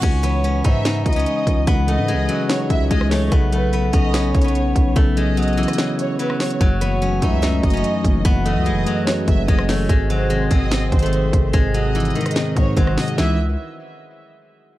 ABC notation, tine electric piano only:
X:1
M:4/4
L:1/8
Q:1/4=146
K:C#m
V:1 name="Tine electric piano" clef=bass
C, E, G, C D C G, E, | C, E, G, C D C G, E, | C, F, B, C c C B, F, | C, F, B, C c C B, F, |
F,, E, F, A, C A, F, E, | F,, E, F, A, C A, F, E, | G,, ^B,, D, G ^B,2 D, B,, | G,, ^B,, D, G, ^B, G, D, B,, |
[E,G,CD] z6 z |]